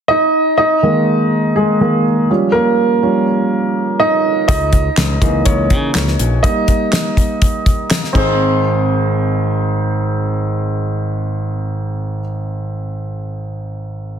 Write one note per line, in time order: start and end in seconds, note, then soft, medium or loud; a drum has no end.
0.08 0.56 D#4 medium
0.08 0.56 D#5 medium
0.58 1.52 D#4 medium
0.58 1.52 D#5 medium
0.83 1.52 D#3 soft
0.83 1.53 G#3 soft
0.83 1.53 A#3 soft
1.56 1.79 G#3 medium
1.56 2.25 G#4 medium
1.80 2.02 D#3 soft
1.80 2.02 G#3 soft
1.80 2.03 A#3 soft
2.30 2.62 F3 soft
2.30 2.62 G3 soft
2.30 2.63 C#4 soft
2.52 3.23 A#3 medium
2.52 3.22 A#4 medium
3.02 3.24 F3 soft
3.02 3.25 G3 soft
3.02 3.25 C#4 soft
4.00 4.46 D#4 medium
4.00 4.45 D#5 medium
4.48 4.89 C#2 medium
4.48 5.21 D#4 medium
4.48 5.49 D#5 medium
4.48 kick medium
4.48 closed hi-hat medium
4.73 kick medium
4.73 closed hi-hat medium
4.97 5.18 C#2 medium
4.97 snare medium
4.97 clap medium
4.97 closed hi-hat medium
5.21 5.42 C#2 medium
5.21 5.54 E3 soft
5.21 5.55 A#3 soft
5.21 5.55 D#4 soft
5.21 kick medium
5.21 closed hi-hat medium
5.45 5.72 C#2 medium
5.45 6.16 C#4 medium
5.45 6.15 C#5 medium
5.45 kick medium
5.45 closed hi-hat medium
5.70 5.91 C#3 medium
5.70 kick medium
5.70 closed hi-hat soft
5.95 6.15 C#2 medium
5.95 snare medium
5.95 clap medium
5.95 closed hi-hat medium
6.07 snare soft
6.19 6.40 A#1 medium
6.19 closed hi-hat medium
6.43 8.11 G3 soft
6.43 8.11 A#3 soft
6.43 7.14 D#4 medium
6.43 7.13 D#5 medium
6.43 kick medium
6.43 closed hi-hat medium
6.68 kick medium
6.68 closed hi-hat medium
6.93 snare medium
6.93 clap medium
6.93 closed hi-hat medium
7.17 kick medium
7.17 closed hi-hat medium
7.42 kick medium
7.42 closed hi-hat medium
7.66 kick medium
7.66 closed hi-hat medium
7.91 snare medium
7.91 clap medium
7.91 closed hi-hat medium
8.04 snare soft
8.13 12.20 G#1 medium
8.13 12.17 C4 medium
8.13 12.19 D#4 medium
8.13 12.20 G#4 medium
8.13 kick medium
8.13 crash medium
8.18 12.22 C5 medium